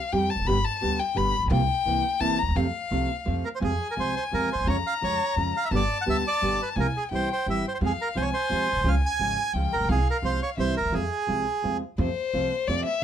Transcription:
Already playing: violin F5
0.12 upright bass F2, nylon-string guitar F3 G3 C4 G4, violin G5
0.30 violin A5
0.35 upright bass E1 F1
0.45 upright bass F#1 G1, nylon-string guitar B2 D3 G3 B3 G4, violin B5
0.65 violin A5
0.81 upright bass D2, nylon-string guitar B2 D3 G3 B3 G4
1.00 violin G5
1.15 upright bass G1, nylon-string guitar B2 D3 G3 B3 G4, violin B5
1.38 upright bass A1
1.43 upright bass A#1 B1
1.50 upright bass C2, nylon-string guitar C3 F3 A#3 C4 F4, violin G5
1.85 upright bass C2, nylon-string guitar C3 E3 A#3 C4 E4
2.20 upright bass G1, nylon-string guitar C3 E3 A#3 C4 E4, violin A5
2.39 upright bass D2, violin A#5
2.48 upright bass D#2 E2
2.56 upright bass F2, nylon-string guitar C3 F3 A3 C4 F4, violin F5
2.90 upright bass C2, nylon-string guitar C3 F3 A3 C4 F4
3.25 upright bass F2, nylon-string guitar C3 F3 A3 C4 F4
3.45 bandoneon A#4
3.55 bandoneon C5
3.60 upright bass F2, nylon-string guitar C3 F3 G#3 C4 F4, violin G#5
3.64 bandoneon G#4
3.91 bandoneon A#4
3.97 upright bass C2, nylon-string guitar C3 F3 G#3 C4 F4, bandoneon C5
4.16 bandoneon C5
4.31 upright bass F2, nylon-string guitar C3 F3 G#3 C4 F4, bandoneon A#4
4.53 upright bass D2, bandoneon C5
4.60 upright bass D#2 E2
4.66 upright bass F2, nylon-string guitar C#3 F3 G#3 C#4 F4, bandoneon C#5, violin A#5
4.87 bandoneon F5
5.01 upright bass F2, nylon-string guitar C#3 F3 G#3 C#4 F4, bandoneon C#5
5.36 upright bass F2, nylon-string guitar C#3 F3 G#3 C#4 F4
5.57 bandoneon F5
5.65 bandoneon E5
5.71 upright bass G1, nylon-string guitar B2 D3 G3 B3 G4, violin A5
5.76 bandoneon D5
6.01 bandoneon F#5
6.06 upright bass D2, nylon-string guitar B2 D3 G3 B3 G4
6.10 bandoneon E5
6.27 bandoneon D5
6.41 upright bass G1, nylon-string guitar B2 D3 G3 B3 G4
6.62 bandoneon B4
6.75 upright bass C2, nylon-string guitar C3 F3 G#3 C4 F4, violin G#5
6.80 bandoneon A#4
6.97 bandoneon G#4
7.11 upright bass C2, nylon-string guitar C3 E3 G3 C4 E4, violin G5
7.15 bandoneon C5
7.33 bandoneon C5
7.46 upright bass G1, nylon-string guitar C3 E3 G3 C4 E4, bandoneon E5
7.68 bandoneon C5
7.75 bandoneon C5
7.80 upright bass F2, nylon-string guitar C3 F3 G#3 C4 F4, violin F5
7.86 bandoneon G#4
8.01 bandoneon A#4
8.15 upright bass C2, nylon-string guitar C3 F3 G#3 C4 F4, bandoneon C5, violin G#5
8.22 bandoneon C#5
8.34 bandoneon C5
8.49 upright bass F2, nylon-string guitar C3 F3 G#3 C4 F4
8.72 upright bass A#1
8.76 upright bass B1
8.81 upright bass C2 C#2, nylon-string guitar C#3
8.85 nylon-string guitar F3 G#3 C#4 F4, bandoneon F5, violin G#5
9.06 bandoneon G#5
9.19 upright bass G#1, nylon-string guitar C#3 F3 G#3 C#4 F4
9.53 upright bass C#2, nylon-string guitar C#3 F3 G#3 C#4 F4, violin G5
9.73 upright bass A1, bandoneon A#4
9.80 upright bass A#1 B1
9.88 upright bass C2, nylon-string guitar C3 F3 G#3 C4 F4, bandoneon G#4, violin F5
10.10 bandoneon A#4
10.22 upright bass C2, nylon-string guitar C3 F3 G#3 C4 F4, bandoneon C5
10.42 bandoneon C#5
10.57 upright bass C2, nylon-string guitar C3 E3 G3 C4 E4, bandoneon C5, violin E5
10.77 upright bass D2, bandoneon A#4
10.85 upright bass D#2
10.90 upright bass E2 F2, nylon-string guitar C3 F3 G#3 C4 F4
10.94 bandoneon G#4
11.27 upright bass C2, nylon-string guitar C3 F3 G#3 C4 F4
11.62 upright bass F2, nylon-string guitar C3 F3 G#3 C4 F4
11.98 upright bass F2, nylon-string guitar C3 F3 A3 C4 F4, violin C5
12.33 upright bass C2, nylon-string guitar C3 F3 A3 C4 F4
12.68 upright bass F2, nylon-string guitar C3 F3 A3 C4 F4, violin D5
12.85 violin E5

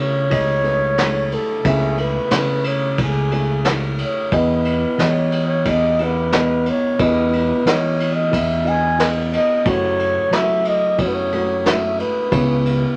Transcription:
Already playing: felt piano C#2 C#3 A3 E4 G#4 C#5, fingered electric bass C#3
0.00 flugelhorn C#5
0.30 fingered electric bass C#2, felt piano A3 E4 G#4 D#5, kick, ride
0.63 felt piano A3 E4 G#4 B4, ride
0.98 felt piano A3 E4 G#4 C#5, snare, ride
1.32 flugelhorn A4, ride
1.64 fingered electric bass C#2, felt piano C#2 C#3 A3 E4 G#4 E5, flugelhorn G#4, kick, ride
1.98 flugelhorn B4, ride
2.31 fingered electric bass C#3, felt piano A3 E4 G#4 C#5, snare, ride
2.64 flugelhorn C#5, ride
2.98 fingered electric bass C#2, felt piano A3 E4 G#4 C#5, kick, ride
3.02 flugelhorn G#4
3.31 felt piano A3 E4 G#4 C#5, ride
3.64 felt piano A3 E4 G#4 C#5, snare, ride
3.98 ride
4.03 flugelhorn C#5
4.32 fingered electric bass E2, felt piano E2 E3 B3 E4 G#4 D#5, flugelhorn B4, kick, ride
4.65 ride
4.97 fingered electric bass E3, felt piano B3 E4 G#4 D#5, snare, ride
5.03 flugelhorn C#5
5.32 ride
5.48 flugelhorn C#5
5.65 fingered electric bass E2, felt piano B3 E4 G#4 D#5, kick, ride
5.70 flugelhorn D#5
5.99 felt piano B3 E4 G#4 F#5, ride
6.03 flugelhorn B4
6.32 felt piano B3 E4 G#4 D#5, snare, ride
6.66 ride
6.70 flugelhorn C#5
6.99 fingered electric bass E2, felt piano E2 E3 B3 E4 G#4 D#5, kick, ride
7.04 flugelhorn B4
7.33 ride
7.65 fingered electric bass E3, felt piano B3 E4 G#4 D#5, snare, ride
7.71 flugelhorn C#5
8.00 ride
8.14 flugelhorn D#5
8.31 fingered electric bass E2, felt piano B3 E4 G#4 D#5, kick, ride
8.35 flugelhorn E5
8.64 felt piano B3 E4 G#4 D#5, ride
8.68 flugelhorn G#5
8.98 felt piano B3 E4 G#4 D#5, snare, ride
9.33 flugelhorn D#5, ride
9.65 felt piano F#1 F#2 A3 E4 F#4 C#5, fingered electric bass F#2, kick, ride
9.69 flugelhorn C#5
9.99 ride
10.31 fingered electric bass F#3, felt piano A3 E4 F#4 E5, flugelhorn E5, snare, ride
10.65 flugelhorn D#5, ride
10.98 fingered electric bass F#2, felt piano A3 E4 F#4 C#5, flugelhorn C#5, kick, ride
11.08 flugelhorn B4
11.15 flugelhorn C#5
11.32 felt piano A3 E4 F#4 C#5, ride
11.65 felt piano A3 E4 F#4 C#5, flugelhorn E5, snare, ride
11.99 flugelhorn B4, ride
12.31 felt piano C#2 C#3 B3 E4 G#4 C#5, fingered electric bass C#2, kick, ride
12.65 ride

